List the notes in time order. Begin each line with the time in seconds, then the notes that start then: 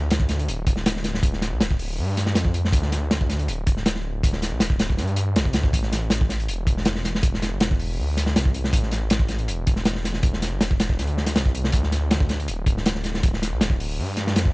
Already playing: D2
0.11 snare, closed hi-hat
0.20 kick
0.29 snare, closed hi-hat
0.39 closed hi-hat
0.48 D1, closed hi-hat
0.67 kick, closed hi-hat
0.76 snare
0.86 snare, closed hi-hat
0.96 snare
1.04 snare, closed hi-hat
1.14 snare
1.23 kick, closed hi-hat
1.33 snare
1.41 snare, closed hi-hat
1.52 C2
1.61 D1, snare, closed hi-hat
1.71 kick
1.79 open hi-hat
1.98 G2
2.17 snare, closed hi-hat
2.26 snare
2.35 F2, snare, closed hi-hat
2.45 kick
2.54 closed hi-hat
2.65 snare
2.73 D2, kick, closed hi-hat
2.82 snare
2.92 snare, closed hi-hat
3.11 snare, closed hi-hat
3.21 kick
3.29 snare, closed hi-hat
3.39 closed hi-hat
3.48 D1, closed hi-hat
3.67 kick, closed hi-hat
3.77 snare
3.86 snare, closed hi-hat
3.95 snare
4.23 kick, closed hi-hat
4.33 snare
4.42 snare, closed hi-hat
4.52 C2
4.60 D1, snare, closed hi-hat
4.70 kick
4.79 snare, closed hi-hat
4.90 kick
4.98 G2, snare, closed hi-hat
5.07 closed hi-hat
5.16 closed hi-hat
5.36 C2, snare, closed hi-hat
5.45 kick
5.53 D2, snare, closed hi-hat
5.64 kick
5.73 A1, kick, closed hi-hat
5.83 snare
5.92 snare, closed hi-hat
6.10 snare, closed hi-hat
6.21 kick
6.29 snare, closed hi-hat
6.40 closed hi-hat
6.48 E1, closed hi-hat
6.67 kick, closed hi-hat
6.77 snare
6.85 snare, closed hi-hat
6.95 snare
7.05 snare, closed hi-hat
7.15 snare
7.23 kick, closed hi-hat
7.34 snare
7.42 snare, closed hi-hat
7.52 G1
7.60 E1, snare, closed hi-hat
7.71 kick
7.79 open hi-hat
7.98 D2
8.17 snare, closed hi-hat
8.26 snare
8.36 C2, snare, closed hi-hat
8.46 kick
8.54 closed hi-hat
8.64 snare
8.73 A1, kick, closed hi-hat
8.83 snare
8.91 snare, closed hi-hat
9.10 snare, closed hi-hat
9.19 kick
9.28 snare, closed hi-hat
9.39 closed hi-hat
9.48 E1, closed hi-hat
9.67 kick, closed hi-hat
9.76 snare
9.85 snare, closed hi-hat
9.95 snare
10.04 snare, closed hi-hat
10.14 snare
10.23 kick, closed hi-hat
10.33 snare
10.42 snare, closed hi-hat
10.52 G1
10.61 E1, snare, closed hi-hat
10.71 kick
10.80 snare, closed hi-hat
10.89 kick
10.98 D2, snare, closed hi-hat
11.07 closed hi-hat
11.17 snare
11.26 snare, closed hi-hat
11.36 C2, snare, closed hi-hat
11.46 kick
11.55 closed hi-hat
11.64 snare
11.72 D2, kick, closed hi-hat
11.83 snare
11.92 snare, closed hi-hat
12.11 snare, closed hi-hat
12.20 kick
12.29 snare, closed hi-hat
12.40 closed hi-hat
12.48 D1, closed hi-hat
12.66 kick, closed hi-hat
12.77 snare
12.86 snare, closed hi-hat
12.95 snare
13.04 snare, closed hi-hat
13.14 snare
13.23 kick, closed hi-hat
13.33 snare
13.42 snare, closed hi-hat
13.52 C2
13.61 D1, snare, closed hi-hat
13.70 kick
13.80 open hi-hat
13.98 G2
14.17 snare, closed hi-hat
14.27 snare
14.36 F2, snare, closed hi-hat
14.45 kick